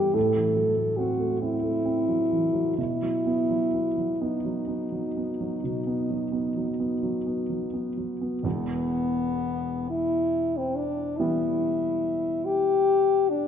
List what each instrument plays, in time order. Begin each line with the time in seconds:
Already playing: grand piano G2 E3 G3 B3, french horn G4
0.14 grand piano A2, french horn A4
0.36 grand piano E3
0.55 grand piano F#3
0.76 grand piano A3
0.98 grand piano C4, french horn F#4
1.20 grand piano A3
1.41 grand piano C4, french horn E4
1.63 grand piano A3
1.85 grand piano C4
2.08 grand piano F#3
2.31 grand piano E3
2.53 grand piano F#3
2.78 grand piano B2, french horn E4
3.02 grand piano F#3
3.26 grand piano B3
3.50 grand piano F#3
3.75 grand piano B3
3.98 grand piano F#3
4.21 grand piano B3, french horn D#4
4.45 grand piano F#3
4.67 grand piano B3
4.92 grand piano F#3
5.17 grand piano B3
5.41 grand piano F#3
5.64 grand piano B2
5.87 grand piano B3
6.10 grand piano F#3
6.32 grand piano B3
6.57 grand piano F#3
6.80 grand piano B3
7.03 grand piano F#3
7.26 grand piano B3
7.50 grand piano F#3
7.73 grand piano B3
7.97 grand piano F#3
8.21 grand piano B3
8.43 grand piano E1 E2, french horn B3
9.90 french horn E4
10.57 french horn C4
10.76 french horn D4
11.17 grand piano E3 G3 B3, french horn E4
12.46 french horn G4
13.30 french horn D4